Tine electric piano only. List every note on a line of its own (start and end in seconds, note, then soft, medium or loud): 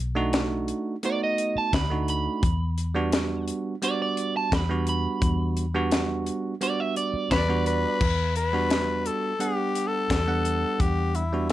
0.15 0.94 A3 medium
0.15 0.95 D4 medium
0.15 0.95 D#4 medium
0.15 0.95 F#4 loud
1.03 1.82 A3 medium
1.03 1.82 B3 medium
1.03 1.83 D#4 medium
1.03 1.83 F#4 medium
1.90 2.42 A3 medium
1.90 2.43 D4 medium
1.90 2.43 D#4 medium
1.90 2.43 F#4 medium
2.95 3.74 G3 medium
2.95 3.74 B3 medium
2.95 3.74 D4 medium
2.95 3.74 F#4 loud
3.82 4.61 G3 medium
3.82 4.61 B3 medium
3.82 4.62 D4 medium
3.82 4.62 F#4 medium
4.69 5.64 G3 medium
4.69 5.64 B3 medium
4.69 5.65 D4 medium
4.69 5.65 F#4 loud
5.74 6.53 G3 medium
5.74 6.53 B3 medium
5.74 6.53 D4 medium
5.74 6.54 F#4 loud
6.61 7.40 G3 medium
6.61 7.40 B3 medium
6.61 7.40 D4 medium
6.61 7.41 F#4 medium
7.48 8.01 G3 medium
7.48 8.01 B3 medium
7.48 8.01 D4 medium
7.48 8.01 F#4 medium
8.53 9.32 G3 medium
8.53 9.32 B3 medium
8.53 9.32 D4 medium
8.53 9.32 F#4 medium
9.39 10.19 G3 medium
9.39 10.19 B3 medium
9.39 10.19 D4 medium
9.39 10.20 F#5 medium
10.27 11.22 G3 medium
10.27 11.22 B3 medium
10.27 11.22 D4 medium
10.27 11.22 F#5 medium
11.32 11.53 G3 medium
11.32 11.53 B3 medium
11.32 11.53 D4 medium
11.32 11.53 F#4 medium